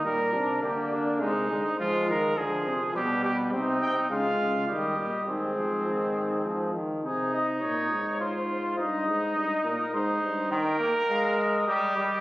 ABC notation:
X:1
M:3/4
L:1/8
Q:1/4=103
K:Gphr
V:1 name="Cornet"
d4 c2 | c4 =B2 | [K:Ab] c g f2 e e | A4- A z |
A e d2 c c | e3 B c2 | g2 f e3 |]
V:2 name="Trumpet"
B2 G D E2 | F B A2 G G | [K:Ab] E2 F2 G2 | C4- C z |
E4 F2 | E4 E2 | B4 G2 |]
V:3 name="Trombone" clef=bass
G, D B,2 A, A, | A,2 F,2 G,2 | [K:Ab] C2 A,2 G,2 | E, F, E,2 F, E, |
z6 | z6 | E, B, A,2 G, G, |]
V:4 name="Bass trombone" clef=bass
B,, C, D,2 C, D, | F, E, D, C, =B,,2 | [K:Ab] C, C, D, D, E, B,, | A,,4- A,, z |
C,2 B,, A,,3 | G,, A,, G,, B,, A,, G,, | z6 |]